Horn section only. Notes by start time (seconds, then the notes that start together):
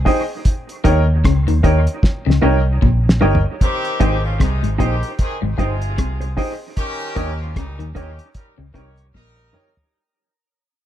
3.61 D#3 C4 G4
4.24 F3 C#4 F4
4.40 C3 G#3 D#4
4.80 D#3 C4 G4
5.19 D#3 C4 G#4
5.58 C3 F4 G#4
6.77 D#3 C#4 G4
7.40 F3 C#4 F4
7.56 A#2 G3 D#4
7.96 D#3 C#4 G4
8.35 G3 D#4 A#4
8.75 D#3 G4 C#5
9.14 G3 D#4 A#4